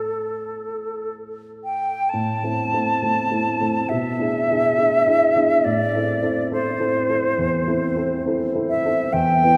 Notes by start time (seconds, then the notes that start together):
Already playing: A2 A3 C4 E4 A4
1.64 G5
2.09 A5
2.13 A2
2.43 A3 C4 E4
2.73 A3 C4 E4
3.02 A3 C4 E4
3.31 A3 C4 E4
3.61 A3 C4 E4
3.89 B2 E5
4.19 D4 E4 G#4
4.50 D4 E4 G#4
4.78 D4 E4 G#4
5.06 D4 E4 G#4
5.36 D4 E4 G#4
5.64 A2 D5
5.95 C4 E4 A4
6.22 C4 E4 A4
6.51 C4 E4 A4 C5
6.80 C4 E4 A4
7.09 C4 E4 A4
7.38 E2
7.67 C4 E4 A4
7.96 C4 E4 A4
8.26 C4 E4 A4
8.54 C4 E4 A4
8.69 E5
8.85 C4 E4 A4
9.13 E2 G5
9.44 B3 E4 B4